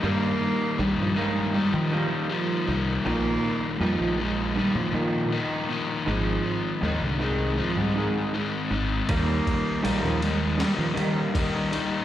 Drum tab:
RD |----------------|----------------|----------------|x-x-x-x-x-x-x-x-|
SD |----------------|----------------|----------------|-----o--o-------|
BD |----------------|----------------|----------------|o-o---------o---|